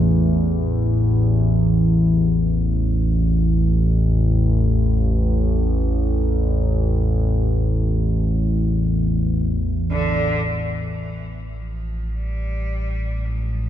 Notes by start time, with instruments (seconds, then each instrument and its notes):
Already playing: synth drone A1 E2
9.91 cello D3
10.46 synth drone A1, cello E3
11.57 cello F3
12.13 cello G3
13.25 cello F3